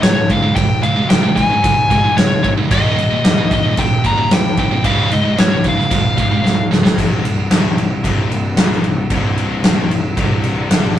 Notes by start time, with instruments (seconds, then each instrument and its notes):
0.01 picked electric bass C#1, distorted electric guitar C#2 G#2, lead electric guitar C#5, snare, crash
0.28 picked electric bass C#1, distorted electric guitar C#2 G#2, lead electric guitar F5, kick, crash
0.41 distorted electric guitar C#2 G#2
0.55 picked electric bass C#1, distorted electric guitar C#2 G#2, lead electric guitar G5, kick, crash
0.82 picked electric bass C#1, distorted electric guitar C#2 G#2, lead electric guitar F5, crash
0.95 distorted electric guitar C#2 G#2
1.08 picked electric bass C#1, distorted electric guitar C#2 G#2, lead electric guitar G5, snare, crash
1.22 distorted electric guitar C#2 G#2
1.35 distorted electric guitar C#2 G#2, lead electric guitar G#5, kick, crash
1.49 distorted electric guitar C#2 G#2
1.62 picked electric bass C#1, distorted electric guitar C#2 G#2, kick, crash
1.90 picked electric bass C#1, distorted electric guitar C#2 G#2, kick, crash
2.03 distorted electric guitar C#2 G#2
2.17 picked electric bass C#1, distorted electric guitar C#2 G#2, lead electric guitar C#5, snare, crash
2.43 picked electric bass C#1, distorted electric guitar C#2 G#2, lead electric guitar C#5, kick, crash
2.57 distorted electric guitar C#2 G#2
2.69 picked electric bass D#1, distorted electric guitar D#2 A#2 D#3, lead electric guitar D#5, kick, crash
2.96 distorted electric guitar D#2 A#2, crash
3.10 distorted electric guitar D#2 A#2
3.24 picked electric bass D#1, distorted electric guitar D#2 A#2, snare, crash
3.37 distorted electric guitar D#2 A#2
3.50 picked electric bass D#1, distorted electric guitar D#2 A#2, lead electric guitar D#5, kick, crash
3.64 distorted electric guitar D#2 A#2
3.77 picked electric bass D#1, distorted electric guitar D#2 A#2, lead electric guitar G5, kick, crash
4.04 picked electric bass D#1, distorted electric guitar D#2 A#2, lead electric guitar A#5, kick, crash
4.18 distorted electric guitar D#2 A#2
4.31 picked electric bass D#1, distorted electric guitar D#2 A#2, lead electric guitar G5, snare, crash
4.57 picked electric bass C1, distorted electric guitar D#2 A#2, lead electric guitar G5, kick, crash
4.71 distorted electric guitar D#2 A#2
4.83 picked electric bass C#1, distorted electric guitar C#2 G#2 C#3, lead electric guitar F5, kick, crash
5.11 picked electric bass C#1, distorted electric guitar C#2 G#2, lead electric guitar D#5, crash
5.23 distorted electric guitar C#2 G#2
5.36 picked electric bass C#1, distorted electric guitar C#2 G#2, lead electric guitar C#5, snare, crash
5.50 distorted electric guitar C#2 G#2
5.64 distorted electric guitar C#2 G#2, kick, crash
5.69 lead electric guitar F5
5.76 distorted electric guitar C#2 G#2, snare
5.90 picked electric bass C#1, distorted electric guitar C#2 G#2, kick, crash
6.16 picked electric bass C#1, distorted electric guitar C#2 G#2, kick, crash
6.31 distorted electric guitar C#2 G#2
6.44 picked electric bass C#1, distorted electric guitar C#2 G#2, snare
6.71 picked electric bass C#1, distorted electric guitar C#2 G#2, snare
6.83 distorted electric guitar C#2 G#2, snare
6.96 picked electric bass C1, distorted electric guitar C2 G2 C3, kick, crash
7.24 picked electric bass C1, distorted electric guitar C2 G2, crash
7.50 picked electric bass D#1, distorted electric guitar D#2 A#2 D#3, snare, crash
7.77 picked electric bass C1, distorted electric guitar C2 G2, crash
8.04 picked electric bass C1, distorted electric guitar C2 G2 C3, kick, crash
8.29 picked electric bass C1, distorted electric guitar C2 G2, crash
8.57 picked electric bass A#1, distorted electric guitar A#2 F3 A#3, snare, crash
8.71 snare
8.83 picked electric bass C1, distorted electric guitar C2 G2, crash
9.10 picked electric bass C1, distorted electric guitar C2 G2 C3, kick, crash
9.38 crash
9.63 picked electric bass D#1, distorted electric guitar D#2 A#2 D#3, snare, crash
9.89 picked electric bass C1, distorted electric guitar C2 G2, crash
10.17 picked electric bass C1, distorted electric guitar C2 G2 C3, kick, crash
10.44 crash
10.69 picked electric bass G1, distorted electric guitar G2 D3 G3, snare, crash